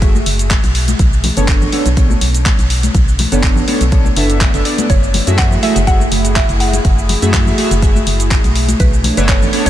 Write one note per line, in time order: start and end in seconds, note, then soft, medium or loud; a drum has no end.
0.00 0.21 F#1 medium
0.00 0.17 A3 medium
0.00 0.17 F#4 medium
0.00 0.17 G#4 medium
0.00 0.17 E5 medium
0.00 kick loud
0.00 closed hi-hat medium
0.00 cabasa soft
0.15 high conga loud
0.15 cabasa soft
0.26 0.58 F#1 medium
0.26 open hi-hat loud
0.39 closed hi-hat medium
0.39 cabasa medium
0.50 kick loud
0.50 clap loud
0.50 closed hi-hat medium
0.50 high conga medium
0.50 cabasa medium
0.64 0.94 B1 medium
0.64 closed hi-hat soft
0.64 cabasa soft
0.75 open hi-hat medium
0.88 closed hi-hat medium
0.88 high conga medium
0.88 cabasa medium
0.99 1.31 B1 loud
0.99 kick loud
0.99 closed hi-hat medium
0.99 cabasa soft
1.13 cabasa soft
1.24 open hi-hat loud
1.24 high conga medium
1.24 low conga medium
1.37 1.67 F#1 medium
1.37 1.70 B3 medium
1.37 1.70 D4 medium
1.37 1.70 A4 medium
1.37 1.70 C#5 loud
1.37 closed hi-hat soft
1.37 cabasa medium
1.48 kick loud
1.48 clap loud
1.48 closed hi-hat medium
1.48 cabasa medium
1.62 low conga medium
1.62 cabasa soft
1.72 1.88 B3 medium
1.72 1.88 D4 medium
1.72 1.88 A4 medium
1.72 1.88 C#5 loud
1.72 open hi-hat medium
1.72 high conga medium
1.86 2.16 B1 medium
1.86 closed hi-hat soft
1.86 cabasa medium
1.97 2.12 B3 medium
1.97 2.12 D4 medium
1.97 2.12 A4 medium
1.97 2.12 C#5 medium
1.97 kick loud
1.97 closed hi-hat medium
1.97 cabasa soft
2.10 high conga medium
2.10 cabasa soft
2.21 2.53 B1 medium
2.21 open hi-hat loud
2.34 closed hi-hat medium
2.34 cabasa medium
2.46 kick loud
2.46 clap loud
2.46 closed hi-hat medium
2.46 high conga medium
2.46 cabasa medium
2.59 2.89 B1 medium
2.59 closed hi-hat soft
2.59 cabasa soft
2.70 open hi-hat loud
2.83 closed hi-hat soft
2.83 high conga medium
2.83 cabasa medium
2.95 3.26 B1 loud
2.95 kick loud
2.95 closed hi-hat medium
2.95 cabasa soft
3.08 cabasa soft
3.19 open hi-hat loud
3.19 high conga medium
3.19 low conga medium
3.32 3.63 F#1 medium
3.32 3.65 B3 medium
3.32 3.65 D4 medium
3.32 3.65 A4 medium
3.32 3.65 C#5 loud
3.32 closed hi-hat soft
3.32 cabasa medium
3.43 kick loud
3.43 clap loud
3.43 closed hi-hat medium
3.43 cabasa medium
3.56 low conga medium
3.56 cabasa soft
3.68 3.83 B3 medium
3.68 3.83 D4 medium
3.68 3.83 A4 medium
3.68 3.83 C#5 loud
3.68 open hi-hat medium
3.68 high conga medium
3.81 4.11 B1 medium
3.81 closed hi-hat soft
3.81 cabasa medium
3.92 4.07 B3 medium
3.92 4.07 D4 medium
3.92 4.07 A4 medium
3.92 4.07 C#5 medium
3.92 kick loud
3.92 closed hi-hat medium
3.92 cabasa soft
4.05 high conga medium
4.05 cabasa soft
4.16 4.48 F#1 medium
4.16 4.51 B3 medium
4.16 4.51 D4 medium
4.16 4.51 A4 medium
4.16 4.51 E5 loud
4.16 open hi-hat loud
4.30 closed hi-hat soft
4.30 cabasa medium
4.41 kick loud
4.41 clap loud
4.41 closed hi-hat medium
4.41 high conga medium
4.41 cabasa medium
4.54 4.62 F#1 medium
4.54 4.63 B3 medium
4.54 4.63 D4 medium
4.54 4.63 A4 medium
4.54 4.63 E5 medium
4.54 closed hi-hat soft
4.54 cabasa soft
4.65 4.88 B3 medium
4.65 4.88 D4 medium
4.65 4.88 A4 medium
4.65 4.88 D5 medium
4.65 open hi-hat medium
4.78 closed hi-hat soft
4.78 high conga loud
4.78 cabasa medium
4.90 5.21 F#1 loud
4.90 8.52 A3 medium
4.90 8.52 E4 medium
4.90 8.52 G#4 medium
4.90 5.40 C#5 loud
4.90 kick loud
4.90 closed hi-hat medium
4.90 cabasa medium
5.03 cabasa soft
5.14 open hi-hat loud
5.14 high conga medium
5.14 low conga medium
5.27 5.58 F#2 medium
5.27 5.60 A3 medium
5.27 5.60 F#4 medium
5.27 5.60 G#4 medium
5.27 5.60 E5 loud
5.27 closed hi-hat soft
5.27 cabasa medium
5.38 5.64 F#5 loud
5.38 kick loud
5.38 clap loud
5.38 closed hi-hat medium
5.38 cabasa medium
5.51 low conga medium
5.51 cabasa soft
5.63 5.78 A3 medium
5.63 5.78 F#4 medium
5.63 5.78 G#4 medium
5.63 5.88 E5 loud
5.63 5.78 E5 loud
5.63 open hi-hat medium
5.63 high conga medium
5.76 6.06 F#1 medium
5.76 closed hi-hat soft
5.76 cabasa medium
5.87 6.02 A3 medium
5.87 6.02 F#4 medium
5.87 6.02 G#4 medium
5.87 6.02 E5 medium
5.87 6.37 F#5 loud
5.87 kick loud
5.87 closed hi-hat medium
5.87 cabasa medium
6.00 high conga medium
6.00 cabasa soft
6.12 6.43 F#1 medium
6.12 open hi-hat loud
6.25 closed hi-hat soft
6.25 cabasa medium
6.36 6.61 E5 loud
6.36 kick loud
6.36 clap loud
6.36 closed hi-hat medium
6.36 high conga medium
6.36 cabasa medium
6.49 6.80 F#1 medium
6.49 closed hi-hat soft
6.49 cabasa soft
6.60 7.06 F#5 medium
6.60 open hi-hat medium
6.73 closed hi-hat soft
6.73 high conga medium
6.73 cabasa medium
6.85 7.16 F#1 loud
6.85 kick loud
6.85 closed hi-hat medium
6.85 cabasa medium
6.99 cabasa soft
7.09 open hi-hat loud
7.09 high conga medium
7.09 low conga medium
7.22 7.53 F#2 medium
7.22 7.55 A3 medium
7.22 7.55 F#4 medium
7.22 7.55 G#4 medium
7.22 7.55 E5 loud
7.22 closed hi-hat soft
7.22 cabasa medium
7.34 kick loud
7.34 clap loud
7.34 closed hi-hat medium
7.34 cabasa medium
7.46 low conga medium
7.46 cabasa soft
7.58 7.73 A3 medium
7.58 7.73 F#4 medium
7.58 7.73 G#4 medium
7.58 7.73 E5 loud
7.58 open hi-hat medium
7.58 high conga medium
7.71 8.02 F#1 medium
7.71 closed hi-hat soft
7.71 cabasa medium
7.82 7.97 A3 medium
7.82 7.97 F#4 medium
7.82 7.97 G#4 medium
7.82 7.97 E5 medium
7.82 kick loud
7.82 closed hi-hat medium
7.82 cabasa medium
7.95 high conga medium
7.95 cabasa soft
8.07 8.38 F#1 medium
8.07 open hi-hat loud
8.20 closed hi-hat soft
8.20 cabasa medium
8.30 kick loud
8.30 clap loud
8.30 closed hi-hat medium
8.30 high conga medium
8.30 cabasa medium
8.44 8.75 B1 medium
8.44 closed hi-hat soft
8.44 cabasa soft
8.55 9.70 A3 medium
8.55 9.70 D4 medium
8.55 9.70 C#5 medium
8.55 open hi-hat medium
8.68 closed hi-hat medium
8.68 high conga medium
8.68 cabasa medium
8.80 9.11 B1 loud
8.80 9.15 B4 medium
8.80 kick loud
8.80 closed hi-hat medium
8.80 cabasa medium
8.94 cabasa soft
9.04 open hi-hat loud
9.04 high conga medium
9.04 low conga medium
9.17 9.48 F#1 medium
9.17 9.50 B3 medium
9.17 9.50 D4 medium
9.17 9.50 A4 medium
9.17 9.29 B4 medium
9.17 9.50 C#5 loud
9.17 closed hi-hat medium
9.17 cabasa medium
9.29 9.65 C#5 medium
9.29 kick loud
9.29 clap loud
9.29 closed hi-hat medium
9.29 cabasa medium
9.42 low conga medium
9.42 cabasa soft
9.53 9.68 B3 medium
9.53 9.68 D4 medium
9.53 9.68 A4 medium
9.53 9.68 C#5 loud
9.53 open hi-hat medium
9.53 high conga medium
9.66 9.70 B1 medium
9.66 9.70 C#5 loud
9.66 closed hi-hat medium
9.66 cabasa medium